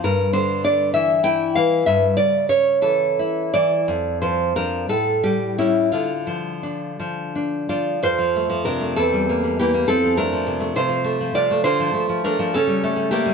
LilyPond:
\new Staff \with { instrumentName = "Nylon-string guitar" } { \time 6/8 \key d \minor \tempo 4. = 65 << { bes'8 c''8 d''8 e''8 g''8 f''8 | e''8 d''8 cis''8 a'4 d''8~ | d''8 c''8 bes'8 a'8 g'8 e'8 | f'4. r4 <f' d''>8 |
\key f \major <f' c''>4 <d' bes'>8 <c' a'>4 <bes g'>8 | <c' a'>8 <d' bes'>4 <f' c''>4 <f' d''>8 | <f' c''>4 <d' bes'>8 <cis' a'>4 <bes g'>8 | } \\ { g,8 d8 d'8 e8 e'8 e8 | g,8 cis8 cis'8 e8 e'8 e8 | f,8 f8 <f d'>8 a,8 g8 <g cis'>8 | d8 f8 d'8 f8 d'8 f8 |
f,16 f16 a16 f16 c16 a16 e,16 g16 bes16 g16 e16 bes16 | f,16 f16 a16 f16 c16 a16 c16 f16 a16 f16 c16 a16 | d16 f16 a16 f16 a16 f16 cis16 g16 a16 g16 a16 g16 | } >> }